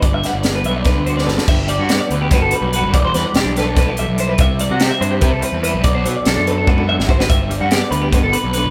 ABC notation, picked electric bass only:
X:1
M:7/8
L:1/16
Q:1/4=145
K:G
V:1 name="Picked electric bass" clef=bass
G,,,2 z G,,,3 B,,,3 D,,3 G,,, z | G,,,3 G,,2 z D,,2 G,, G,,, z B,,,2 G,,, | E,,,2 E,, z E,,, B,,,6 B,,,3 | C,,3 C,2 z G,,2 C, C,, z E,,2 C,, |
B,,,2 B,, z B,,, F,,6 _A,,,3 | G,,,3 G,,2 z D,,2 G,, G,,, z B,,,2 =F,,, |]